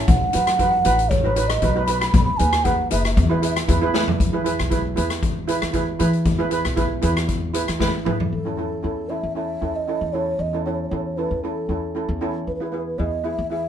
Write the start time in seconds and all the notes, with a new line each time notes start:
0.07 B1 F#5, kick, closed hi-hat
0.33 F#2 D#4 F#4 B4, closed hi-hat
0.47 cross-stick, closed hi-hat
0.59 D#4 F#4 B4, kick, closed hi-hat
0.85 A1 D#4 F#4 B4, closed hi-hat
0.99 closed hi-hat
1.09 C#5, kick, closed hi-hat
1.24 D#4 F#4 B4
1.36 D#4 F#4 B4, closed hi-hat
1.48 D#5, cross-stick, closed hi-hat
1.62 B1 D#4 F#4 B4, kick, closed hi-hat
1.75 D#4 F#4 B4
1.86 D#4 F#4 B4 B5, closed hi-hat
1.94 B5
2.01 B5, cross-stick, closed hi-hat
2.09 B5
2.14 B1 B5, kick, closed hi-hat
2.24 B5
2.37 D#2 D#4 G#4 B4 G#5, closed hi-hat
2.53 cross-stick, closed hi-hat
2.64 D#4 G#4 B4 F#5, kick, closed hi-hat
2.91 F#1 D#4 G#4 B4 E5, closed hi-hat
3.00 E5
3.05 E5, cross-stick, closed hi-hat
3.14 E2 E5, kick, closed hi-hat
3.22 E5
3.29 E4 G#4 B4 E5
3.36 E5
3.42 E4 G#4 B4 E5, closed hi-hat
3.51 E5
3.56 cross-stick, closed hi-hat
3.68 E2 E4 G#4 B4, kick, closed hi-hat
3.81 E4 G#4 B4
3.94 E4 G#4 B4, snare
4.08 floor tom
4.20 E2, kick, closed hi-hat
4.33 E4 G#4 B4
4.45 E4 G#4 B4, closed hi-hat
4.59 B1, cross-stick, closed hi-hat
4.70 E4 G#4 B4, kick, closed hi-hat
4.96 E2 E4 G#4 B4, closed hi-hat
5.10 cross-stick, closed hi-hat
5.23 kick, closed hi-hat
5.48 E4 G#4 B4, closed hi-hat
5.62 E2, cross-stick, closed hi-hat
5.73 E4 G#4 B4, kick, closed hi-hat
5.99 E3 E4 G#4 B4, closed hi-hat
6.13 closed hi-hat
6.25 E2, kick, closed hi-hat
6.38 E4 G#4 B4
6.51 E4 G#4 B4, closed hi-hat
6.65 B1, cross-stick, closed hi-hat
6.76 E4 G#4 B4, kick, closed hi-hat
7.02 E2 E4 G#4 B4, closed hi-hat
7.17 cross-stick, closed hi-hat
7.29 kick, closed hi-hat
7.53 E4 G#4 B4, closed hi-hat
7.68 E2, cross-stick, closed hi-hat
7.80 E4 G#4 B4, kick, snare
8.05 E3 E4 G#4 B4, mid tom
8.20 floor tom
8.32 E2 A4
8.45 C#4 E4 A4
8.57 C#4 E4 A4
8.83 E2 C#4 E4 A4
9.09 C#4 E4 A4 E5
9.23 E2
9.35 C#4 E4 A4 E5
9.61 E2 C#4 E4 A4
9.76 D#5
9.88 C#4 E4 A4
10.01 E2
10.13 C#4 E4 A4 C#5
10.39 E2 D#5
10.53 C#4 E4 A4
10.65 C#4 E4 A4 C#5
10.73 C#5
10.83 C#5
10.88 E2 C#4 E4 C#5
10.93 A4 C#5
11.05 C#5
11.17 C#4 E4 A4 B4
11.31 E2
11.43 C#4 E4 A4
11.69 E2 C#4 E4 A4
11.95 C#4 E4 A4
12.09 E2
12.21 C#4 E4 A4
12.47 E2 B4
12.55 B4
12.60 B3 E4 G#4 B4
12.71 B3 E4 G#4 B4
12.77 B4
12.86 B4
12.98 E2 B3 E4 G#4 D#5
13.24 B3 E4 G#4 E5
13.38 E2
13.50 B3 E4 G#4 E5